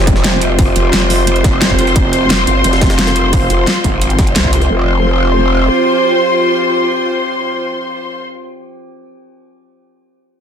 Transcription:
Already playing: wobble bass F1, synth drone F3 C4 G4, string section F4 C5, impact
0.07 kick, closed hi-hat
0.16 snare
0.24 snare, closed hi-hat
0.32 string section C6
0.41 closed hi-hat
0.59 kick, closed hi-hat, open hi-hat
0.76 wobble bass F1, closed hi-hat
0.93 wobble bass F1, snare, closed hi-hat
1.10 closed hi-hat, open hi-hat
1.27 closed hi-hat
1.36 closed hi-hat
1.44 wobble bass F1, kick, snare, closed hi-hat
1.61 snare, closed hi-hat
1.70 kick
1.79 closed hi-hat
1.87 closed hi-hat
1.96 wobble bass F1, synth drone F4, kick, closed hi-hat
2.13 closed hi-hat
2.30 snare, closed hi-hat
2.47 wobble bass G1, closed hi-hat
2.64 wobble bass F1, closed hi-hat
2.73 snare, closed hi-hat
2.81 kick, snare, closed hi-hat
2.90 snare, closed hi-hat
2.99 snare, closed hi-hat
3.07 snare, closed hi-hat
3.16 closed hi-hat
3.33 kick, closed hi-hat, open hi-hat
3.50 wobble bass F1, closed hi-hat
3.67 snare, closed hi-hat
3.84 wobble bass G#1, kick, closed hi-hat
4.02 closed hi-hat
4.10 closed hi-hat
4.19 kick, snare, closed hi-hat
4.27 closed hi-hat
4.36 wobble bass C2, snare, closed hi-hat
4.44 kick
4.53 closed hi-hat
4.62 closed hi-hat
4.70 wobble bass F1, synth drone F3 C4 G4, string section F4
4.75 string section C5
4.80 string section C6

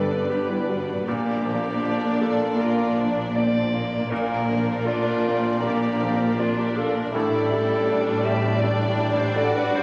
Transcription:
Already playing: double bass section G1, cello section G2, grand piano G2 D3 G3 G4 B4, violin section C4 D5, french horn section D4 B4, viola section D4 B4, clarinet A4
0.29 violin section B3, clarinet G4, grand piano B4
0.49 clarinet E4
0.68 grand piano G3, clarinet F#4
1.06 double bass section A#1, cello section A#2, grand piano A#2, viola section A#3 D4, violin section A#3 D5, french horn section A#3 D4, clarinet G4
1.46 grand piano F3
1.82 violin section D4, grand piano D5
2.21 grand piano F4, clarinet A4
2.59 grand piano A#3, violin section F4, clarinet A#4
2.97 grand piano F3, violin section D4
3.34 violin section C4, clarinet D5, grand piano D5
3.74 violin section A#3, grand piano F4
4.10 double bass section A#1, cello section A#2, grand piano A#2, french horn section A#3 D4, viola section D4 A#4, clarinet A#4, violin section D5
4.50 grand piano F3
4.86 violin section D4, clarinet F4, grand piano D5
5.25 violin section C4, grand piano F4
5.63 violin section A#3, grand piano A#3, clarinet G4
6.01 grand piano F3, violin section C4
6.40 violin section D4, clarinet F4, grand piano D5
6.59 clarinet G4
6.77 grand piano F4, clarinet A4
6.96 clarinet A#4
7.13 double bass section A1, grand piano A2, cello section A2, french horn section G3, viola section G3 D4, violin section E4 D5, clarinet A4
7.53 grand piano G3
7.89 violin section D4, grand piano D5
8.25 violin section C4, grand piano G4, clarinet E5
8.61 grand piano A3, violin section D4, clarinet D5
9.00 grand piano G3
9.17 clarinet C5
9.36 violin section F#4, clarinet A4, grand piano D5
9.55 clarinet B4
9.74 grand piano G3, clarinet C5

